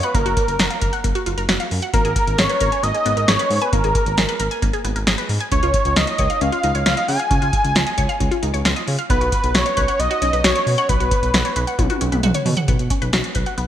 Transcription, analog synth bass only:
0.15 F#1
0.26 F#1
0.48 F#1
0.59 F#1
0.82 F#1
1.04 F#1
1.26 F#1
1.38 F#1
1.49 F#1
1.71 F#2
1.94 G#1
2.05 G#1
2.27 G#1
2.38 G#1
2.61 G#1
2.83 G#1
3.06 G#1
3.17 G#1
3.28 G#1
3.50 G#2
3.73 G#1
3.84 G#1
4.06 G#1
4.17 G#1
4.40 G#1
4.62 G#1
4.85 G#1
4.96 G#1
5.07 G#1
5.29 G#2
5.52 C#2
5.63 C#2
5.85 C#2
5.96 C#2
6.19 C#2
6.41 C#2
6.64 C#2
6.75 C#2
6.86 C#2
7.08 C#3
7.31 C#2
7.42 C#2
7.64 C#2
7.76 C#2
7.98 C#2
8.20 C#2
8.43 C#2
8.54 C#2
8.65 C#2
8.88 C#3
9.10 B1
9.21 B1
9.44 B1
9.55 B1
9.77 B1
10.00 B1
10.22 B1
10.33 B1
10.44 B1
10.67 B2
10.89 B1
11.00 B1
11.23 B1
11.34 B1
11.56 B1
11.79 B1
12.01 B1
12.12 B1
12.23 B1
12.46 B2
12.68 B1
12.79 B1
13.02 B1
13.13 B1
13.35 B1
13.58 B1

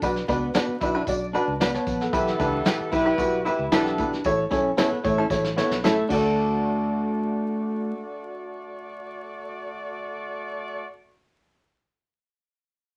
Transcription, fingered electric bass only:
0.02 B1
0.29 C#2
0.68 muted fingered electric bass stroke
0.81 B1
1.07 B1
1.48 C#2
1.87 A#1
2.13 B1
2.40 C#2
2.80 muted fingered electric bass stroke
2.93 B1
3.18 B1
3.59 C#2
3.72 B1
3.98 B2
4.25 A1
4.52 B1
4.92 muted fingered electric bass stroke
5.05 A1
5.30 A1
5.71 B1
6.10 D2

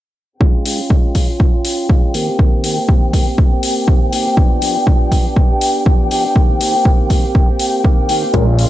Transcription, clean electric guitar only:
0.40 G#3 C#4 F4
0.65 G#3 C#4 F4
0.79 C#4 F4
0.90 G#3 C#4
1.15 G#3 C#4 F4
1.28 C#4 F4
1.53 C#4 F4
1.89 G#3 C#4 F4
2.14 D#3 A#3 C4 G4
2.27 A#3 C4 G4
2.39 D#3 A#3 C4
2.63 D#3 A#3 C4 G4
2.77 A#3 C4 G4
2.88 D#3 C4 G4
3.13 D#3 A#3 C4 G4
3.27 A#3 C4 G4
3.51 A#3 C4 G4
3.87 D#3 A#3
4.12 D#3 A#3 C4 G4
4.26 A#3 C4 G4
4.37 F3 B3 D4 G4
4.62 F3 B3 D4 G4
4.75 B3 D4 G4
4.87 F3 B3 D4
5.11 F3 B3 D4 G4
5.25 B3 D4 G4
5.50 B3 D4 G4
5.86 F3 B3 D4 G4
6.11 F3 B3 D4 G4
6.25 B3 D4 G4
6.35 D#3 A#3 C4 G4
6.60 D#3 A#3 C4 G4
6.74 A#3 C4 G4
6.85 D#3 A#3 C4 G4
7.09 D#3 A#3 C4 G4
7.24 A#3 C4 G4
7.49 A#3 C4 G4
7.84 D#3 A#3 C4 G4
8.09 D#3 A#3 C4 G4
8.23 A#3 C4 G4
8.34 G#3 C#4 F4
8.58 G#3 C#4 F4

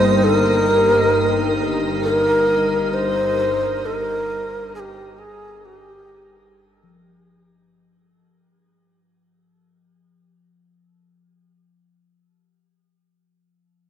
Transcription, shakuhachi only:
Already playing: C5
0.24 A#4
2.03 A#4
2.93 C5
3.85 A#4
4.75 G#4
4.80 G4
5.19 G#4
5.65 G4

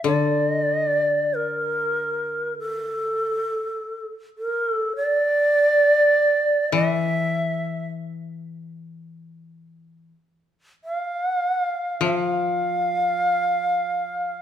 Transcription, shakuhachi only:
0.06 D5
0.50 D#5
0.62 D5
0.75 D#5
0.87 D5
1.34 A#4
2.59 A4
4.38 A#4
4.70 A4
4.96 D5
6.73 E5
10.84 F5
12.03 F5

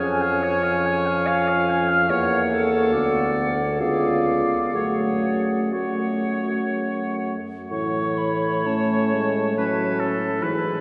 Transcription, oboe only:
0.00 G#5
0.21 F5
0.43 C#5
0.63 F5
0.85 G#5
1.06 F5
1.27 C#5
1.48 F5
1.69 G#5
1.89 F5
2.09 C#5
2.92 D5
3.80 D5
4.75 C#5
5.73 C#5
7.72 C#5
9.58 B4
10.00 A4
10.43 B4

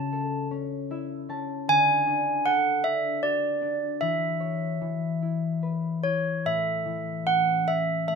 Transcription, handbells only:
Already playing: A5
1.69 G#5
2.46 F#5
2.84 E5
3.23 D5
4.01 E5
6.03 C#5
6.46 E5
7.27 F#5
7.68 E5
8.08 E5

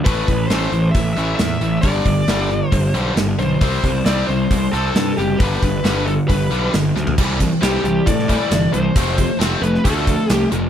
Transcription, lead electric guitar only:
0.05 B4
0.48 C5
0.91 E5
1.14 E5
1.36 E5
1.81 D5
2.69 C5
3.39 C5
4.06 D5
4.27 C5
4.71 A4
5.17 G4
5.38 B4
6.06 A4
6.28 B4
7.63 G4
7.84 G4
8.06 D5
8.73 C5
9.62 B4
9.84 A4
10.32 G4

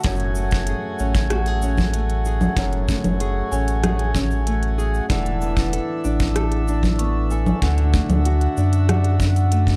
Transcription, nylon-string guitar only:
Already playing: A3 D4 F#4
0.05 F#2
0.36 A3
0.68 G#4
1.00 C#4
1.31 F#4
1.47 G#4
1.63 C#4
1.94 A3
2.26 G#4
2.58 F#2
2.89 A3
3.21 G#4
3.52 C#4
3.84 G#4
4.16 C#4
4.47 A3
4.78 G#4
5.10 E3
5.42 B3
5.73 A4
6.04 D4
6.36 A4
6.68 D4
7.00 B3
7.32 A4
7.62 D3
7.94 A3
8.26 F#4
8.57 D4
8.89 F#4
9.21 D4
9.52 A3

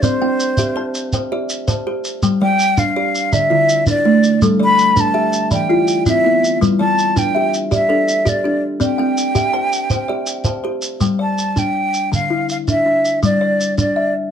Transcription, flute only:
0.02 C5
2.42 G5
2.79 F5
3.33 E5
3.89 D5
4.64 B5
5.00 A5
5.53 G5
6.08 E5
6.80 A5
7.19 G5
7.74 E5
8.29 D5
8.84 G5
11.22 A5
11.59 G5
12.14 F5
12.51 F5
12.70 E5
13.25 D5
13.80 D5

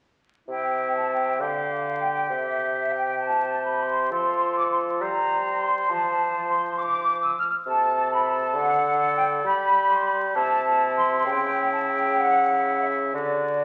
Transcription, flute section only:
0.49 G5
0.94 A5
1.10 G5
1.39 F5
2.00 G5
2.30 E5
2.92 G5
3.19 A5
3.64 B5
3.80 C6
4.12 C6
4.56 D6
4.70 C6
5.01 A#5
5.60 C6
5.89 A5
6.48 C6
6.78 D6
7.22 E6
7.38 F6
7.67 A5
8.13 B5
8.28 A5
8.56 F#5
9.16 G5
9.45 B5
9.90 C6
10.04 B5
10.34 A5
10.96 C6
11.25 G5
11.71 A5
11.87 G5
12.19 F#5
12.81 E5
13.14 D5

